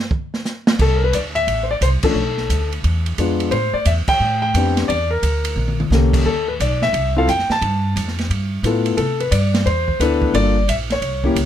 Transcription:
0.11 kick
0.34 snare
0.45 snare, hi-hat pedal
0.67 snare
0.79 C2 A4, kick, crash
0.96 A#4
1.04 B4
1.13 D2 D5, kick, hi-hat pedal, ride
1.35 E5, ride
1.47 A1, kick, ride
1.63 C5
1.71 D5
1.81 C2 C5, kick, hi-hat pedal, ride
2.03 F3 A3 C#4 D4 A4, muted upright bass stroke, kick, crash
2.14 B1
2.37 snare
2.50 D2, kick, hi-hat pedal, ride
2.72 ride
2.84 E2, kick, ride
3.06 ride
3.18 F2 G#3 B3 D4 F4, kick, hi-hat pedal, ride
3.40 ride
3.51 A2 C5, kick, ride
3.74 D5, muted upright bass stroke
3.85 E2 E5, kick, hi-hat pedal, ride
4.08 G5, muted upright bass stroke, kick, crash
4.20 A2
4.42 G5
4.54 F2 B3 C4 D4 G4, kick, hi-hat pedal, ride
4.77 snare, ride
4.88 E2 D5, kick, ride
5.11 A#4
5.23 D2, kick, hi-hat pedal, ride
5.45 ride
5.56 A#1, mid tom
5.68 mid tom
5.80 mid tom
5.90 C2 A#3 C#4 G4 A4, snare, hi-hat pedal
6.13 kick, crash
6.25 D2 A4, kick
6.48 B4
6.60 B1 D5, kick, hi-hat pedal, ride
6.82 E5, snare
6.93 C2, kick, ride
7.17 C4 E4 F4 A4 F5
7.27 F2 G5, kick, hi-hat pedal, ride
7.39 snare
7.49 A5, muted upright bass stroke, snare
7.61 G2, kick, ride
7.96 F2, kick, hi-hat pedal, ride
8.08 snare
8.19 snare, ride
8.30 G2, kick, ride
8.63 A2 B3 E4 F4 A4, kick, hi-hat pedal, ride
8.86 ride
8.97 C3 A4, kick, ride
9.20 B4, ride
9.31 G2 D5, kick, hi-hat pedal, ride
9.54 snare, ride
9.66 E2 C5, kick, ride
9.88 kick
10.00 D2 B3 D4 E4 A4 B4, kick, hi-hat pedal, ride
10.22 kick
10.33 G1 A#3 D4 F4 A4 D5, kick, ride
10.68 A#1 E5, kick, hi-hat pedal, ride
10.90 C#5, snare, ride
11.02 C2, kick, ride
11.24 A#3 C#4 E4 G4, kick
11.35 C#2, kick, hi-hat pedal, ride

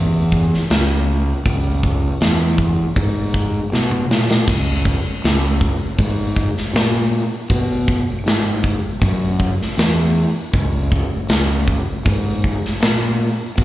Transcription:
Already playing: E2
0.32 kick
0.54 snare
0.70 C#2, snare, open hi-hat
1.46 C#2, kick, open hi-hat
1.83 kick
2.21 E2, snare, open hi-hat
2.58 kick
2.96 G#2, kick, open hi-hat
3.34 kick
3.72 B2, snare
3.91 mid tom
4.11 A#2, snare
4.31 snare
4.48 C#2, kick, crash
4.85 kick
5.24 C#2, snare, open hi-hat
5.61 kick
5.99 G#2, kick, open hi-hat
6.36 kick
6.57 snare
6.74 A#2, snare, open hi-hat
7.50 B2, kick, open hi-hat
7.88 kick
8.26 G#2, snare, open hi-hat
8.64 kick
9.02 F#2, kick, open hi-hat
9.40 kick
9.61 snare
9.77 E2, snare, open hi-hat
10.53 C#2, kick, open hi-hat
10.92 kick
11.29 C#2, snare, open hi-hat
11.68 kick
12.05 G#2, kick, open hi-hat
12.44 kick
12.65 snare
12.81 A#2, snare, open hi-hat
13.57 B2, kick, open hi-hat

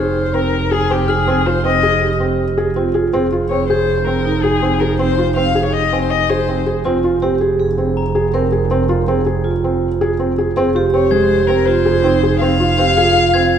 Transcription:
Already playing: F1 D#4 G#4 F6
0.00 C5
0.34 C4 A#4
0.71 G#4
0.90 C4 G4
1.08 G#4 F6
1.27 C4
1.46 F4 C5
1.65 C4 D#5
1.83 G#4
2.01 G4
2.20 C4
2.58 G#4
2.76 C4 F4
2.94 F4 G#4
3.13 F1 C4 G#4
3.32 F4
3.50 C4 C#5
3.68 G#4 C5 G6
3.98 C5
4.05 C4 A#4
4.25 D#4
4.43 G#4
4.62 C4
4.80 G#4 A#4
4.98 C4 C5
5.18 F4
5.36 C4 F5
5.55 G#4
5.65 C#5
5.73 D#5
5.93 C4 G#5
6.01 C5
6.11 D#5
6.30 G#4 C5
6.49 C4
6.67 G#4
6.85 F1 C4 F4
7.04 F4
7.22 C4 G4
7.41 G#4
7.59 G#4
7.78 C4
7.97 A#5
8.15 G#4
8.34 C4 A#4
8.52 G#4
8.71 C4
8.89 F4
9.08 C4 G#4
9.26 G#4
9.44 F4
9.64 C4
10.01 G#4
10.19 C4
10.38 G#4
10.56 F1 C4 G#4
10.75 F4 G4
10.94 C4 C#5
11.11 G#3 C5 G#6
11.47 C4 A#4
11.66 F4 C5
11.86 G#4
12.03 C4 D#4
12.23 G#4
12.40 C4 F5
12.60 F4
12.78 C4 G4
12.97 F4 G#4
13.34 C4 G#6

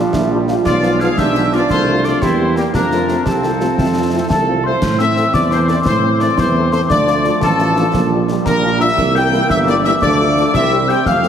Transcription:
Already playing: F3 G3 F4
0.13 A#1 E4, concert bass drum, snare
0.31 G3 D4 F4
0.48 G3 D4 F4, snare
0.65 B1 F3 G#3 F4 D5 D6, concert bass drum, snare, crash
0.83 F3 B3 F4, snare
1.00 F3 B3 F4 G#4 F5 F6, snare
1.17 B1 D4 G4 E5 E6, concert bass drum, snare
1.35 F3 B3 F4, snare
1.52 F3 B3 F4 D5 D6, snare
1.69 C2 A3 F4 C5 C6, concert bass drum, snare
1.88 F3 A3 F4
2.04 F3 A3 F4 D5 D6, snare
2.21 E2 G3 A#3 E4 G4 C5 C6, concert bass drum, snare
2.39 G3 A#3 C4
2.56 G3 A#3 C4 G4 G5, snare
2.74 F2 F3 C4 D4 F4 A#4 A#5, concert bass drum, snare
2.91 F3 A3 C4, snare
3.09 F3 A3 C4, snare
3.26 C2 C4 G4 A4 A5, concert bass drum, snare
3.43 F3 A3 C4, snare
3.60 F3 A3 C4 F4, snare
3.78 F2 E4, concert bass drum, snare
3.95 F3 A3 C4 F4
4.13 F3 A3 C4 E4
4.30 C2 A4 A5, concert bass drum, snare
4.47 F3 A3 C4 F4
4.64 F3 A3 C4 E4 C5 C6
4.81 A2 E3 C4, concert bass drum, snare, crash
4.99 A3 C4 E5 E6, snare
5.16 A3 C4, snare
5.34 E2 D5 D6, concert bass drum, snare
5.51 A3 C4 C5 C6, snare
5.68 A3 C4 D5 D6, snare
5.85 A2 C5 C6, concert bass drum, snare
6.03 A3 C4
6.20 A3 C4 D5 D6, snare
6.37 E2 C5 C6, concert bass drum, snare
6.55 A3 C4
6.72 A3 C4 C5 C6, snare
6.89 D2 F3 A3 D5 D6, concert bass drum, snare
7.07 A3 D4 F4, snare
7.24 A3 D4 F4, snare
7.41 A1 A4 A5, concert bass drum, snare
7.59 A3 D4 F4, snare
7.76 A3 D4 F4, snare
7.93 A#1 G3, concert bass drum, snare
8.11 G3 D4 F4
8.28 G3 D4 F4, snare
8.45 A#1 A#4 A#5, concert bass drum, snare
8.63 G3 D4 F4
8.80 G3 D4 F4 E5 E6, snare
8.98 C2 E3 A#3, concert bass drum, snare, crash
9.15 G3 A#3 E4 G5 G6, snare
9.32 G3 A#3 E4, snare
9.50 G1 E5 E6, concert bass drum, snare
9.67 G3 A#3 E4 D5 D6, snare
9.84 G3 A#3 E4 E5 E6, snare
10.02 D2 F3 A3 D5 D6, concert bass drum, snare
10.20 F3 A3 D4
10.36 F3 A3 D4, snare
10.54 C2 G3 C4 E5 E6, concert bass drum, snare
10.71 G3 C4 G4
10.88 G3 C4 G4 G5 G6, snare
11.06 F2 A3 C4 F5 F6, concert bass drum, snare
11.23 A3 C4 F4, snare

